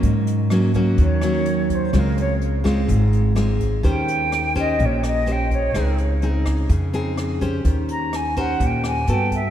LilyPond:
<<
  \new Staff \with { instrumentName = "Flute" } { \time 4/4 \key ees \dorian \tempo 4 = 126 r2 des''4. c''8 | bes'8 des''8 r2. | g''4. ees''8 des''8 ees''8 g''8 des''8~ | des''8 r2. r8 |
r8 bes''8 aes''8 ges''8 g''8 aes''8 g''8 e''8 | }
  \new Staff \with { instrumentName = "Nylon-string guitar" } { \time 4/4 \key ees \dorian << { <ges bes des'>4 <ges bes des'>8 <ges bes des'>4 <ges bes des'>4. | <aes c' f'>4. <aes c' f'>4. <aes c' f'>4 | <des' g' c''>4. <des' g' c''>4. <des' g' c''>4 | <c' ees' aes'>4 <c' ees' aes'>4 r8 <c' ees' aes'>4 <des' g' c''>8~ |
<des' g' c''>4. <des' g' c''>4. <b fis' a'>8 r8 | } \\ { aes,2 ees2 | des2 aes,2 | ees2 bes,2 | des2 des2 |
ees2 bes,4 r4 | } >> }
  \new Staff \with { instrumentName = "Upright bass" } { \clef bass \time 4/4 \key ees \dorian aes,2 ees,2 | des,2 aes,,2 | ees,2 bes,,2 | des,2 f,2 |
ees,2 ees,4 g,4 | }
  \new DrumStaff \with { instrumentName = "Drums" } \drummode { \time 4/4 <hh bd>8 hh8 <hh ss>8 <hh bd>8 <hh bd>8 <hh ss>8 hh8 <hh bd>8 | <hh bd ss>8 hh8 hh8 <hh bd ss>8 <hh bd>8 hh8 <hh ss>8 <hh bd>8 | <hh bd>8 hh8 <hh ss>8 <hh bd>8 <hh bd>8 <hh ss>8 hh8 <hh bd>8 | <hh bd ss>8 hh8 hh8 <hh bd ss>8 <hh bd>8 hh8 <hh ss>8 <hh bd>8 |
<hh bd>8 hh8 <hh ss>8 <hh bd>8 <hh bd>8 <hh ss>8 hh8 <hh bd>8 | }
>>